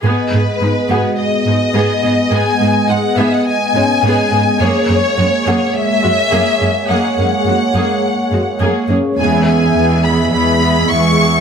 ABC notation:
X:1
M:4/4
L:1/16
Q:1/4=105
K:G#m
V:1 name="Violin section"
B8 d8 | g4 f2 e f g8 | c8 e8 | f12- f2 z2 |
g2 g4 b2 b4 c'4 |]
V:2 name="Felt piano"
z6 [Ff]8- [Ff]2- | [Ff]2 z8 [Cc]6- | [Cc]6 f8- f2- | f2 z12 [Cc]2- |
[Cc]8- [Cc]2 z6 |]
V:3 name="Analog synth pad"
[G,B,Gd]16- | [G,B,Gd]16 | [G,A,Gc]16- | [G,A,Gc]16 |
[G,B,Ge]16 |]
V:4 name="Viola section"
[B,G]2 [B,G]2 [G,D]2 [B,G]2 z2 [G,D]2 [B,G]2 [B,G]2 | [B,G]2 [B,G]2 [G,D]2 [B,G]2 z2 [G,D]2 [B,G]2 [B,G]2 | [A,G]2 [A,G]2 [G,F]2 [A,G]2 z2 [G,F]2 [A,G]2 [A,G]2 | [A,G]2 [A,G]2 [G,F]2 [A,G]2 z2 [G,F]2 [A,G]2 [A,G]2 |
[B,G]2 [B,G]2 [B,G]2 [B,G]2 [B,G]2 [B,G]2 [B,G]2 [B,G]2 |]
V:5 name="Cello section" clef=bass
G,,2 G,,2 G,,2 G,,2 z2 G,,2 G,,2 G,,2 | G,,2 G,,2 G,,2 G,,2 z2 G,,2 G,,2 G,,2 | F,,2 F,,2 F,,2 F,,2 z2 F,,2 F,,2 F,,2 | F,,2 F,,2 F,,2 F,,2 z2 F,,2 F,,2 F,,2 |
E,,4 E,,4 E,,4 E,,4 |]